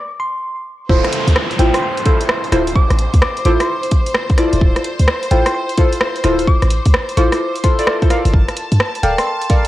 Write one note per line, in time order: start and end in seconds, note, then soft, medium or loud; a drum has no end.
0.20 0.66 C6 medium
0.89 1.01 D1 loud
0.89 1.56 E4 loud
0.89 1.56 F4 medium
0.89 1.56 A4 medium
0.89 1.56 C5 loud
0.89 8.35 C5 medium
0.89 kick loud
0.89 downlifter medium
1.04 cross-stick medium
1.04 closed hi-hat medium
1.12 closed hi-hat loud
1.28 1.34 D2 loud
1.28 closed hi-hat medium
1.36 cross-stick loud
1.51 closed hi-hat soft
1.59 1.71 A1 loud
1.59 1.70 E4 medium
1.59 1.70 F4 medium
1.59 1.70 A4 medium
1.59 1.70 C5 medium
1.59 1.71 G5 medium
1.59 closed hi-hat loud
1.74 1.79 C6 medium
1.74 cross-stick medium
1.74 closed hi-hat medium
1.83 1.92 C6 medium
1.97 closed hi-hat medium
2.06 2.22 E4 loud
2.06 2.22 F4 medium
2.06 2.22 A4 loud
2.06 2.22 C5 loud
2.06 kick loud
2.06 closed hi-hat loud
2.21 closed hi-hat medium
2.29 cross-stick loud
2.44 closed hi-hat soft
2.52 2.85 D1 loud
2.52 2.63 E4 loud
2.52 2.63 F4 medium
2.52 2.63 A4 medium
2.52 2.63 C5 loud
2.52 cross-stick medium
2.52 closed hi-hat loud
2.67 closed hi-hat medium
2.75 2.93 D6 medium
2.75 kick loud
2.90 3.07 A1 loud
2.90 cross-stick medium
2.90 closed hi-hat medium
2.99 closed hi-hat loud
3.14 3.20 D2 loud
3.14 kick medium
3.14 closed hi-hat medium
3.22 3.40 D6 medium
3.22 cross-stick loud
3.37 closed hi-hat soft
3.45 3.57 A1 loud
3.45 3.56 E4 loud
3.45 3.56 F4 medium
3.45 3.56 A4 medium
3.45 3.56 C5 loud
3.45 3.57 D6 medium
3.45 closed hi-hat loud
3.60 3.92 C6 medium
3.60 cross-stick medium
3.60 closed hi-hat medium
3.83 closed hi-hat medium
3.91 kick loud
3.91 closed hi-hat loud
4.07 closed hi-hat medium
4.15 cross-stick loud
4.30 kick loud
4.30 closed hi-hat soft
4.38 5.29 E4 medium
4.38 5.29 F4 medium
4.38 5.29 A4 medium
4.38 5.29 D5 loud
4.38 cross-stick medium
4.38 closed hi-hat loud
4.53 4.60 D1 loud
4.53 closed hi-hat medium
4.61 4.73 D1 loud
4.61 kick loud
4.76 cross-stick medium
4.76 closed hi-hat medium
4.84 closed hi-hat loud
4.99 5.06 D2 medium
4.99 closed hi-hat medium
5.08 cross-stick loud
5.23 closed hi-hat soft
5.31 5.43 A1 loud
5.31 5.42 E4 medium
5.31 5.42 F4 medium
5.31 5.42 A4 medium
5.31 5.42 C5 medium
5.31 5.43 G5 medium
5.31 closed hi-hat loud
5.46 5.51 C6 medium
5.46 cross-stick medium
5.46 closed hi-hat medium
5.54 5.64 C6 medium
5.69 closed hi-hat medium
5.78 5.94 E4 loud
5.78 5.94 F4 medium
5.78 5.94 A4 medium
5.78 5.94 C5 loud
5.78 kick loud
5.78 closed hi-hat loud
5.93 closed hi-hat medium
6.01 cross-stick loud
6.16 closed hi-hat soft
6.24 6.58 D1 medium
6.24 6.35 E4 loud
6.24 6.35 F4 medium
6.24 6.35 A4 medium
6.24 6.35 C5 loud
6.24 cross-stick medium
6.24 closed hi-hat loud
6.39 closed hi-hat medium
6.47 6.65 D6 medium
6.47 kick loud
6.62 6.80 A1 loud
6.62 cross-stick medium
6.62 closed hi-hat medium
6.70 closed hi-hat loud
6.85 6.92 D2 medium
6.85 kick medium
6.85 closed hi-hat medium
6.94 cross-stick loud
7.09 closed hi-hat soft
7.17 7.29 A1 loud
7.17 7.28 E4 loud
7.17 7.28 F4 medium
7.17 7.28 A4 medium
7.17 7.28 C5 loud
7.17 7.35 D6 medium
7.17 closed hi-hat loud
7.32 cross-stick medium
7.32 closed hi-hat medium
7.55 closed hi-hat medium
7.64 7.76 E4 medium
7.64 7.77 F4 medium
7.64 7.76 A4 medium
7.64 7.76 C5 loud
7.64 8.10 C6 medium
7.64 kick loud
7.64 closed hi-hat loud
7.79 7.98 E4 medium
7.79 7.98 F4 medium
7.79 7.98 A4 medium
7.79 7.98 D5 loud
7.79 closed hi-hat medium
7.87 cross-stick loud
8.02 8.08 E4 medium
8.02 8.08 F4 medium
8.02 8.08 A4 medium
8.02 8.08 C5 medium
8.02 kick loud
8.02 closed hi-hat soft
8.10 8.27 A4 medium
8.10 8.27 A#4 medium
8.10 8.27 D5 medium
8.10 8.27 F5 loud
8.10 cross-stick medium
8.10 closed hi-hat loud
8.25 8.32 G1 loud
8.25 closed hi-hat medium
8.34 8.45 G1 loud
8.34 9.68 A5 medium
8.34 kick loud
8.48 cross-stick soft
8.48 closed hi-hat medium
8.57 closed hi-hat loud
8.72 8.78 G2 medium
8.72 closed hi-hat medium
8.80 cross-stick loud
8.95 closed hi-hat medium
9.03 9.15 D1 loud
9.03 9.14 A4 medium
9.03 9.14 A#4 medium
9.03 9.14 D5 medium
9.03 9.14 F5 medium
9.03 9.15 G5 loud
9.03 closed hi-hat loud
9.18 9.24 C6 medium
9.18 cross-stick medium
9.18 closed hi-hat medium
9.27 9.36 C6 medium
9.42 closed hi-hat medium
9.50 9.66 A4 loud
9.50 9.66 A#4 medium
9.50 9.66 D5 loud
9.50 9.66 F5 loud
9.50 kick loud
9.50 closed hi-hat loud